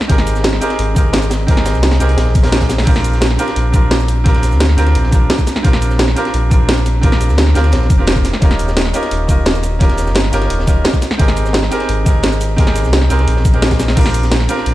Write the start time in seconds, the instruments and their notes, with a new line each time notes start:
0.01 snare
0.08 sub bass G#1, grand piano C4 D#4 G4 G#4 A#4, kick, closed hi-hat
0.18 snare, closed hi-hat
0.27 closed hi-hat, cabasa
0.36 snare, cabasa
0.44 snare, closed hi-hat
0.53 snare
0.61 grand piano C4 D#4 G4 G#4 A#4, closed hi-hat, cabasa
0.70 snare, closed hi-hat
0.79 sub bass G#1, closed hi-hat
0.94 grand piano C4 D#4 G4 G#4 A#4, kick, closed hi-hat, cabasa
1.13 snare, closed hi-hat
1.22 snare, cabasa
1.31 snare, closed hi-hat, cabasa
1.47 grand piano C4 D#4 G4 G#4 A#4, kick, closed hi-hat
1.57 snare, closed hi-hat
1.66 snare, closed hi-hat, cabasa
1.74 sub bass C2, snare, cabasa
1.83 snare, closed hi-hat
1.91 snare, closed hi-hat
2.00 sub bass C2, grand piano C4 D#4 G4 G#4 A#4, snare, closed hi-hat, cabasa
2.09 closed hi-hat
2.17 sub bass A#1, snare, closed hi-hat
2.27 snare
2.35 kick, closed hi-hat, cabasa
2.43 grand piano C4 D#4 G4 G#4 A#4, snare, closed hi-hat
2.52 snare, closed hi-hat
2.60 kick, snare, closed hi-hat, cabasa
2.69 snare, closed hi-hat, cabasa
2.78 snare, closed hi-hat
2.83 grand piano C4 D4, snare, closed hi-hat
2.87 sub bass A#1, grand piano F4 G4 A#4, kick, closed hi-hat, crash
2.96 snare, closed hi-hat
3.04 closed hi-hat, cabasa
3.13 snare, cabasa
3.21 snare, closed hi-hat
3.30 snare
3.38 grand piano C4 D4 F4 G4 A#4, closed hi-hat, cabasa
3.48 snare, closed hi-hat
3.56 sub bass A#1, closed hi-hat
3.72 grand piano C4 D4 F4 G4 A#4, kick, closed hi-hat, cabasa
3.91 snare, closed hi-hat
4.00 snare, cabasa
4.08 closed hi-hat, cabasa
4.24 grand piano C4 D4 F4 G4 A#4, kick, closed hi-hat
4.34 snare, closed hi-hat
4.43 snare, closed hi-hat, cabasa
4.52 sub bass D2, snare, cabasa
4.60 snare, closed hi-hat
4.69 snare
4.77 sub bass D2, grand piano C4 D4 F4 G4 A#4, snare, closed hi-hat, cabasa
4.87 snare, closed hi-hat
4.95 sub bass A#1, closed hi-hat
5.03 snare
5.11 grand piano C4 D4 F4 G4 A#4, kick, closed hi-hat, cabasa
5.30 snare, closed hi-hat
5.39 kick, snare, cabasa
5.47 snare, closed hi-hat, cabasa
5.56 snare
5.63 sub bass A#1, grand piano C4 D4 F4 G4 A#4, kick, closed hi-hat
5.73 snare, closed hi-hat
5.82 closed hi-hat, cabasa
5.90 snare, cabasa
5.99 snare, closed hi-hat
6.08 snare
6.16 grand piano C4 D4 F4 G4 A#4, closed hi-hat, cabasa
6.25 snare, closed hi-hat
6.34 sub bass A#1, closed hi-hat
6.50 grand piano C4 D4 F4 G4 A#4, kick, closed hi-hat, cabasa
6.69 snare, closed hi-hat
6.77 snare, cabasa
6.86 closed hi-hat, cabasa
7.01 grand piano C4 D4 F4 G4 A#4, kick, closed hi-hat
7.12 snare, closed hi-hat
7.21 snare, closed hi-hat, cabasa
7.29 sub bass D2, snare, cabasa
7.38 snare, closed hi-hat
7.47 snare
7.54 sub bass D2, grand piano C4 D4 F4 G4 A#4, snare, closed hi-hat, cabasa
7.64 snare, closed hi-hat
7.72 sub bass A#1, snare, closed hi-hat
7.81 snare
7.90 sub bass F1, kick, closed hi-hat, cabasa
7.98 grand piano C4 D4 F4 G4 A#4
8.07 snare, closed hi-hat
8.16 kick, snare, cabasa
8.25 snare, closed hi-hat, cabasa
8.33 snare
8.40 sub bass D#1, grand piano C#4 D#4 F4 G4 A#4, kick, closed hi-hat
8.51 snare, closed hi-hat
8.59 closed hi-hat, cabasa
8.68 snare, cabasa
8.77 snare, closed hi-hat
8.85 snare
8.93 grand piano C#4 D#4 F4 G4 A#4, closed hi-hat, cabasa
9.02 snare, closed hi-hat
9.11 sub bass D#1, closed hi-hat
9.27 grand piano C#4 D#4 F4 G4 A#4, kick, closed hi-hat, cabasa
9.46 snare, closed hi-hat
9.55 snare, cabasa
9.63 closed hi-hat, cabasa
9.79 grand piano C#4 D#4 F4 G4 A#4, kick, closed hi-hat
9.89 snare, closed hi-hat
9.97 snare, closed hi-hat, cabasa
10.06 sub bass G1, snare, cabasa
10.15 snare, closed hi-hat
10.24 snare
10.32 sub bass G1, grand piano C#4 D#4 F4 G4 A#4, snare, closed hi-hat, cabasa
10.42 snare, closed hi-hat
10.50 sub bass D#1, closed hi-hat
10.59 snare
10.67 grand piano C#4 D#4 F4 G4 A#4, kick, closed hi-hat, cabasa
10.85 snare, closed hi-hat
10.93 kick, snare, cabasa
11.02 snare, closed hi-hat, cabasa
11.11 snare
11.18 sub bass G#1, grand piano C4 D#4 G4 G#4 A#4, kick, closed hi-hat
11.28 snare, closed hi-hat
11.36 closed hi-hat, cabasa
11.46 snare, cabasa
11.53 snare, closed hi-hat
11.63 snare
11.71 grand piano C4 D#4 G4 G#4 A#4, closed hi-hat, cabasa
11.79 snare, closed hi-hat
11.89 sub bass G#1, closed hi-hat
12.04 grand piano C4 D#4 G4 G#4 A#4, kick, closed hi-hat, cabasa
12.23 snare, closed hi-hat
12.32 snare, cabasa
12.41 closed hi-hat, cabasa
12.56 grand piano C4 D#4 G4 G#4 A#4, kick, closed hi-hat
12.67 snare, closed hi-hat
12.76 snare, closed hi-hat, cabasa
12.84 sub bass C2, snare, cabasa
12.93 snare, closed hi-hat
13.02 snare
13.09 sub bass C2, grand piano C4 D#4 G4 G#4 A#4, snare, closed hi-hat, cabasa
13.19 snare, closed hi-hat
13.27 sub bass A#1, closed hi-hat
13.37 snare
13.45 kick, closed hi-hat, cabasa
13.53 grand piano C4 D#4 G4 G#4 A#4, closed hi-hat
13.62 snare, closed hi-hat
13.71 kick, snare, closed hi-hat, cabasa
13.79 snare, closed hi-hat, cabasa
13.88 snare, closed hi-hat
13.95 sub bass A#1, grand piano C4 D4 F4 G4 A#4, kick, closed hi-hat, crash
14.06 snare, closed hi-hat
14.14 closed hi-hat, cabasa
14.23 snare, cabasa
14.31 snare, closed hi-hat
14.40 snare
14.48 grand piano C4 D4 F4 G4 A#4, closed hi-hat, cabasa
14.58 snare
14.66 sub bass A#1, closed hi-hat